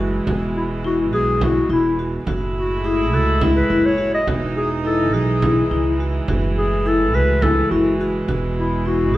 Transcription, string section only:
Already playing: A2 E3 G#3
0.27 B2
2.26 A2 G#3 E4
4.28 E3 G#3 D#4
6.28 A2
8.27 B2

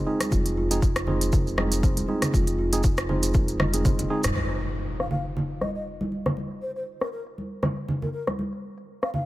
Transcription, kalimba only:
0.07 D#4
0.32 F4
0.57 F4
0.82 D#4
1.07 C5
1.33 A#4
1.58 D#5
1.83 C5
2.09 D#4
2.33 F4
2.59 F4
2.84 D#4
3.09 C5
3.35 A#4
3.60 D#5
3.85 C5
4.10 D#4

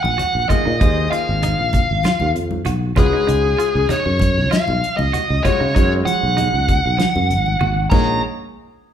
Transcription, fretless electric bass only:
0.04 A#1
0.35 A#1
0.50 muted fretless electric bass stroke
0.67 A#2
0.81 D#2
1.29 G#1
1.59 A#1
1.91 G#1
2.21 D#2
2.35 F2
2.66 B1
2.98 C#2
3.29 C#2
3.75 C#2
3.90 muted fretless electric bass stroke
4.06 F#2
4.38 C#2
4.68 B1
4.99 C#2
5.30 C#2
5.61 C#3
5.76 F#2
6.23 B1
6.54 C#2
6.86 B1
7.16 F#2
7.30 G#1
7.61 G#1
7.92 A#1

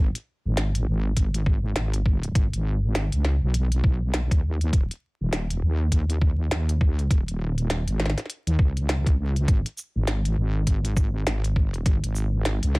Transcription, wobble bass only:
Already playing: G#1
0.45 G#1
0.87 G#1
1.17 G#1
1.76 G#1
2.35 G#1
2.53 G#1
3.13 C#2
3.42 B1
3.84 B1
4.31 D#2
4.73 D#1
5.21 D#1
5.63 D#2
5.92 D#2
6.51 D#2
7.11 D#1
7.28 D#1
7.87 G#1
8.47 D#2
8.59 C#2
9.48 G#1
9.96 G#1
10.38 G#1
10.67 G#1
11.26 G#1
11.86 G#1
12.04 G#1
12.63 C#2

